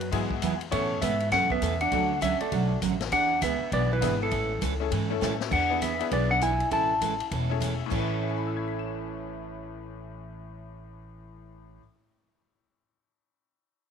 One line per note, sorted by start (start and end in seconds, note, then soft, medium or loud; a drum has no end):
0.00 0.11 F#2 medium
0.00 ride soft
0.11 0.41 G#2 medium
0.11 0.32 E3 medium
0.11 0.32 F#3 medium
0.11 0.57 G#3 medium
0.11 0.57 B3 medium
0.11 0.32 B3 medium
0.11 0.57 E4 medium
0.11 0.33 E4 medium
0.11 0.57 F#4 medium
0.11 0.33 G#4 medium
0.11 0.57 G#4 medium
0.11 kick soft
0.11 ride medium
0.31 kick medium
0.42 0.71 E2 medium
0.42 0.53 E3 medium
0.42 0.53 F#3 medium
0.42 0.53 B3 medium
0.42 0.54 E4 medium
0.42 0.54 G#4 medium
0.42 kick soft
0.42 hi-hat pedal medium
0.42 ride medium
0.61 ride soft
0.71 1.01 A2 medium
0.71 0.92 B2 medium
0.71 1.55 E3 medium
0.71 0.92 E3 medium
0.71 0.92 A3 medium
0.71 1.55 B3 medium
0.71 1.55 C#4 medium
0.71 0.92 C#4 medium
0.71 1.55 E4 medium
0.71 0.92 A4 medium
0.71 1.56 A4 medium
0.71 1.03 C#5 medium
0.71 kick soft
0.71 ride medium
1.01 1.31 G#2 medium
1.01 1.13 B2 medium
1.01 1.13 E3 medium
1.01 1.13 A3 medium
1.01 1.30 B3 medium
1.01 1.13 C#4 medium
1.01 1.13 A4 medium
1.01 1.32 E5 medium
1.01 kick soft
1.01 hi-hat pedal medium
1.01 ride medium
1.20 ride soft
1.32 1.61 F#2 medium
1.32 1.52 B2 medium
1.32 1.52 E3 medium
1.32 1.52 A3 medium
1.32 1.53 C#4 medium
1.32 1.53 A4 medium
1.32 1.51 F#5 medium
1.32 kick soft
1.32 snare soft
1.32 ride medium
1.50 1.79 B3 medium
1.50 1.82 E5 loud
1.50 kick medium
1.61 1.91 E2 loud
1.61 1.73 B2 medium
1.61 1.73 E3 medium
1.61 1.73 A3 medium
1.61 1.73 C#4 medium
1.61 1.73 A4 medium
1.61 kick soft
1.61 hi-hat pedal medium
1.61 ride medium
1.81 2.20 D4 medium
1.81 2.22 F#5 loud
1.81 ride soft
1.92 2.21 D2 medium
1.92 2.12 D3 medium
1.92 2.12 F#3 medium
1.92 2.75 A3 medium
1.92 2.13 A3 medium
1.92 2.13 C#4 medium
1.92 2.75 D4 medium
1.92 2.75 F#4 medium
1.92 2.13 F#4 medium
1.92 2.76 A4 medium
1.92 kick soft
1.92 ride medium
2.21 2.39 C#2 medium
2.21 2.33 D3 medium
2.21 2.33 F#3 medium
2.21 2.33 A3 medium
2.21 2.33 C#4 medium
2.21 2.33 F#4 medium
2.21 2.41 E5 medium
2.21 kick soft
2.21 hi-hat pedal medium
2.21 ride medium
2.40 2.80 A3 medium
2.40 2.79 D5 medium
2.40 muted upright bass stroke soft
2.40 ride soft
2.52 2.81 B1 medium
2.52 2.72 D3 medium
2.52 2.72 F#3 medium
2.52 2.72 A3 medium
2.52 2.72 C#4 medium
2.52 2.72 F#4 medium
2.52 kick soft
2.52 ride medium
2.82 3.11 A1 medium
2.82 2.93 D3 medium
2.82 2.93 F#3 medium
2.82 2.93 A3 medium
2.82 2.94 C#4 medium
2.82 2.94 F#4 medium
2.82 kick soft
2.82 hi-hat pedal medium
2.82 ride medium
3.00 snare medium
3.00 ride soft
3.12 3.41 E2 medium
3.12 3.32 E3 medium
3.12 3.32 B3 medium
3.12 3.33 D4 medium
3.12 3.33 G#4 medium
3.12 3.43 F#5 loud
3.12 kick soft
3.12 ride medium
3.41 3.59 C#2 medium
3.41 3.53 E3 medium
3.41 3.53 B3 medium
3.41 3.53 D4 medium
3.41 3.53 G#4 medium
3.41 3.73 E5 loud
3.41 kick soft
3.41 hi-hat pedal medium
3.41 ride medium
3.61 muted upright bass stroke soft
3.72 4.01 B1 medium
3.72 3.92 E3 medium
3.72 3.92 B3 medium
3.72 3.92 D4 medium
3.72 3.92 G#4 medium
3.72 3.92 D5 medium
3.72 kick soft
3.72 ride medium
3.93 4.20 E3 medium
3.93 4.22 B4 medium
4.01 4.31 G#1 medium
4.01 4.13 E3 medium
4.01 4.31 B3 medium
4.01 4.13 B3 medium
4.01 4.32 D4 medium
4.01 4.13 D4 medium
4.01 4.32 E4 medium
4.01 4.32 G#4 medium
4.01 4.14 G#4 medium
4.01 4.32 B4 medium
4.01 kick soft
4.01 hi-hat pedal medium
4.01 ride medium
4.22 5.37 E3 medium
4.22 5.38 A4 medium
4.31 4.61 A1 medium
4.31 4.51 E3 medium
4.31 4.52 G#3 medium
4.31 4.52 C#4 medium
4.31 4.52 E4 medium
4.31 4.52 A4 medium
4.31 kick soft
4.31 ride medium
4.61 4.91 C#2 medium
4.61 4.73 E3 medium
4.61 4.73 G#3 medium
4.61 4.73 C#4 medium
4.61 4.73 E4 medium
4.61 4.73 A4 medium
4.61 kick soft
4.61 hi-hat pedal medium
4.61 ride medium
4.80 4.90 A3 medium
4.80 4.90 C#4 medium
4.80 4.91 E4 medium
4.80 4.91 G#4 medium
4.80 4.91 A4 medium
4.91 5.21 G#2 medium
4.91 5.11 E3 medium
4.91 5.12 G#3 medium
4.91 5.12 C#4 medium
4.91 5.12 E4 medium
4.91 5.12 A4 medium
4.91 kick soft
4.91 ride medium
5.10 5.49 A3 medium
5.10 5.49 C#4 medium
5.10 5.50 E4 medium
5.10 5.50 A4 medium
5.21 5.51 A2 medium
5.21 5.32 E3 medium
5.21 5.33 G#3 medium
5.21 5.33 C#4 medium
5.21 5.33 E4 medium
5.21 5.33 A4 medium
5.21 snare soft
5.21 hi-hat pedal medium
5.40 snare medium
5.52 6.00 E2 medium
5.52 5.72 E3 medium
5.52 5.72 B3 medium
5.52 5.72 D4 medium
5.52 5.72 G#4 medium
5.52 5.83 F#5 loud
5.52 kick medium
5.52 crash medium
5.70 5.80 B3 medium
5.70 5.80 D4 medium
5.70 5.81 E4 medium
5.70 5.81 G#4 medium
5.70 5.81 B4 medium
5.81 5.93 E3 medium
5.81 5.93 B3 medium
5.81 5.93 D4 medium
5.81 5.93 G#4 medium
5.81 6.13 E5 medium
5.81 kick soft
5.81 hi-hat pedal medium
5.81 ride medium
5.99 6.39 B3 medium
5.99 6.39 D4 medium
5.99 6.39 E4 medium
5.99 6.40 G#4 medium
5.99 6.40 B4 medium
5.99 ride soft
6.11 6.59 B1 loud
6.11 6.32 E3 medium
6.11 6.32 B3 medium
6.11 6.32 D4 medium
6.11 6.32 G#4 medium
6.11 6.31 D5 medium
6.11 kick soft
6.11 ride medium
6.31 6.42 D4 medium
6.31 6.42 F#5 medium
6.41 6.53 E3 medium
6.41 6.53 B3 medium
6.41 6.53 D4 medium
6.41 6.70 E4 medium
6.41 6.53 G#4 medium
6.41 6.73 G#5 medium
6.41 kick soft
6.41 hi-hat pedal medium
6.41 ride medium
6.60 ride soft
6.71 7.19 A1 medium
6.71 6.91 E3 medium
6.71 6.91 G#3 medium
6.71 6.92 C#4 medium
6.71 6.92 E4 medium
6.71 6.92 A4 medium
6.71 7.58 A5 loud
6.71 kick soft
6.71 ride medium
7.01 7.13 E3 medium
7.01 7.13 G#3 medium
7.01 7.13 C#4 medium
7.01 7.13 E4 medium
7.01 7.13 A4 medium
7.01 kick soft
7.01 hi-hat pedal medium
7.01 ride medium
7.20 ride soft
7.31 7.79 E1 medium
7.31 7.52 E3 medium
7.31 7.52 G#3 medium
7.31 7.52 C#4 medium
7.31 7.52 E4 medium
7.31 7.52 A4 medium
7.31 kick soft
7.31 ride medium
7.50 7.89 A3 medium
7.50 7.89 C#4 medium
7.50 7.89 E4 medium
7.50 7.90 G#4 medium
7.50 7.90 A4 medium
7.60 7.72 E3 medium
7.60 7.72 G#3 medium
7.60 7.73 C#4 medium
7.60 7.73 E4 medium
7.60 7.72 A4 medium
7.60 kick soft
7.60 hi-hat pedal soft
7.60 ride medium
7.86 11.79 A2 medium
7.86 11.80 E3 medium
7.90 11.78 A1 medium
7.90 11.81 A2 medium
7.90 11.81 E3 medium
7.90 11.82 C#4 medium
7.90 11.82 E4 medium
7.90 11.82 A4 medium
7.90 kick medium
7.90 crash medium
7.98 11.85 B4 medium
8.22 11.78 E5 soft
8.29 11.82 G#5 soft
8.38 11.86 B5 soft
8.47 11.90 E6 soft
8.57 11.95 G#6 soft
8.68 12.01 B6 soft
8.79 12.07 E7 soft